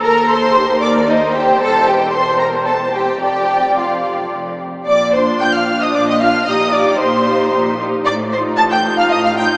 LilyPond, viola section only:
\new Staff \with { instrumentName = "Viola section" } { \time 3/4 \key bes \major \tempo 4 = 113 a'4 g'8 bes'8 c''4~ | c''4 c''2 | d''2~ d''8 r8 | r8 <d' f'>4 <d' f'>4 <d' f'>8 |
<ees' g'>8 <ees' g'>4 <ees' g'>4 <ees' g'>8 | r8 <ees' f'>4 <ees' f'>4 <ees' f'>8 | }